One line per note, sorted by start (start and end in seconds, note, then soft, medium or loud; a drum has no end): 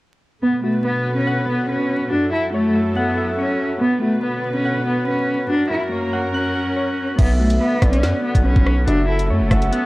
0.42 2.10 B2 medium
0.42 2.10 D3 medium
0.42 5.46 F#3 medium
0.42 0.60 B3 medium
0.42 1.48 B3 medium
0.42 2.10 B4 medium
0.64 0.81 A3 medium
0.64 1.69 F#4 medium
0.84 1.15 B3 medium
0.84 1.68 B4 medium
1.16 1.46 C#4 medium
1.27 2.12 F#5 loud
1.48 1.65 B3 medium
1.69 2.09 C#4 medium
1.69 2.11 B4 medium
2.10 3.79 F#2 medium
2.10 2.29 D4 loud
2.10 3.79 E4 medium
2.10 3.17 F#4 medium
2.10 3.79 A4 medium
2.33 2.50 E4 medium
2.33 3.38 A4 medium
2.54 2.94 A3 loud
2.54 3.37 C#5 medium
2.75 3.16 E5 medium
2.96 3.36 B3 medium
2.96 3.81 F#5 loud
3.18 3.81 E5 medium
3.38 3.78 C#4 medium
3.38 3.81 C#5 medium
3.81 5.48 B2 medium
3.81 5.48 D3 medium
3.81 3.98 B3 medium
3.81 4.86 B3 medium
3.81 5.48 B4 medium
4.02 4.19 A3 medium
4.02 5.07 F#4 medium
4.23 4.53 B3 medium
4.23 5.07 B4 medium
4.55 4.84 C#4 medium
4.65 5.50 F#5 loud
4.86 5.03 B3 medium
5.07 5.47 C#4 medium
5.07 5.50 B4 medium
5.49 7.17 F#2 medium
5.49 7.17 F#3 medium
5.49 7.17 C#4 medium
5.49 5.67 D4 loud
5.49 6.55 F#4 medium
5.49 7.17 A#4 medium
5.71 5.88 E4 medium
5.71 6.76 A#4 medium
5.92 6.32 A#3 medium
5.92 6.75 C#5 medium
6.13 6.54 F#5 medium
6.34 7.15 C#4 medium
6.34 7.19 F#6 loud
6.55 7.19 F#5 medium
6.76 7.19 C#5 medium
7.18 7.59 B1 loud
7.18 8.86 D3 medium
7.18 9.86 F#3 medium
7.18 8.86 B3 medium
7.18 7.36 B3 medium
7.18 8.24 B3 loud
7.18 7.78 E5 loud
7.18 kick loud
7.18 closed hi-hat medium
7.18 crash loud
7.40 7.57 A3 medium
7.40 8.45 F#4 medium
7.50 closed hi-hat medium
7.61 7.91 B3 medium
7.61 8.44 B4 medium
7.82 8.05 B1 loud
7.82 8.42 D5 loud
7.82 kick loud
7.82 cross-stick loud
7.82 closed hi-hat medium
7.93 8.22 C#4 medium
7.93 closed hi-hat medium
8.03 8.13 F#2 loud
8.03 8.88 F#5 loud
8.03 snare loud
8.03 closed hi-hat medium
8.24 8.41 B3 medium
8.35 8.55 B1 loud
8.35 kick medium
8.35 closed hi-hat medium
8.45 8.85 C#4 medium
8.45 8.88 B4 medium
8.56 8.86 B1 loud
8.56 kick loud
8.66 cross-stick medium
8.87 9.31 F#1 loud
8.87 9.86 C#4 medium
8.87 9.05 D4 loud
8.87 9.86 E4 medium
8.87 9.86 F#4 loud
8.87 9.86 A4 medium
8.87 9.47 E5 loud
8.87 closed hi-hat medium
9.09 9.26 E4 medium
9.09 9.86 A4 medium
9.19 closed hi-hat medium
9.30 9.42 F#2 loud
9.30 9.70 A3 loud
9.30 9.86 C#5 medium
9.40 9.50 F#1 loud
9.51 9.71 F#1 loud
9.51 9.86 E5 medium
9.51 9.86 F#5 loud
9.51 kick medium
9.51 cross-stick loud
9.51 closed hi-hat medium
9.62 closed hi-hat medium
9.72 9.86 B3 medium
9.72 9.86 F#5 loud
9.72 closed hi-hat medium